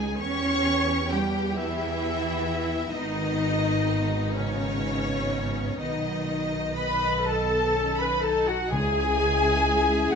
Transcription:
Already playing: double bass section C#2, cello section G#3, violin section C#4 D#4 G#5, viola section G#4
0.18 double bass section E2, violin section B3 G4 C#6, cello section C#4, viola section C#5
1.11 cello section G3, viola section G4, violin section G5
1.56 cello section E3, viola section E4, violin section E5
2.92 double bass section G#1, cello section D#3, violin section D#4 D#5, viola section D#4
4.34 cello section C#3, viola section C#4, violin section C#5
5.78 double bass section B1, cello section D#3, violin section B3 D#5, viola section D#4
6.76 viola section B4, violin section B5, flute B5, oboe B5
7.26 violin section B3 A5, viola section A4, flute A5, oboe A5
7.74 violin section C#4
7.98 viola section B4, violin section B5, flute B5, oboe B5
8.22 violin section D#4 A5, viola section A4, flute A5
8.26 oboe A5
8.47 viola section F#4, violin section F#5, flute F#5, oboe F#5
8.70 double bass section C#2, cello section C#2, timpani C#3, french horn section C#4 E4, viola section G#4, violin section E5 G#5, flute G#5, oboe G#5
10.11 double bass section D#2, cello section D#2, flute F#5

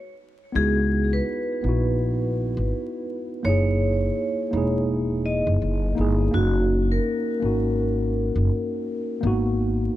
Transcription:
0.52 upright bass C#2, tine electric piano B3 D#4, vibraphone G#4
0.56 tine electric piano E4 F#4
1.13 vibraphone B4
1.63 upright bass A#1, tine electric piano B3 D#4 E4
1.69 tine electric piano F#4
2.57 upright bass G#1
3.43 upright bass F#1, tine electric piano A#3 D#4, vibraphone C#5
3.47 tine electric piano E4 G#4
4.51 upright bass E1, tine electric piano A#3 D#4
4.55 tine electric piano E4 G#4
5.26 vibraphone D#5
5.47 upright bass F#1
5.62 upright bass F#1
5.95 upright bass G1, tine electric piano A#3 D#4 E4
6.01 tine electric piano G#4
6.31 upright bass F#1, tine electric piano A#3 C#4 D#4, vibraphone F#4
6.37 tine electric piano F#4
6.92 vibraphone A#4
7.39 upright bass G#1, tine electric piano A#3 C#4 D#4
7.45 tine electric piano F#4
8.36 upright bass F#1
9.21 upright bass G#1, tine electric piano A#3 B3 D#4
9.27 tine electric piano F#4

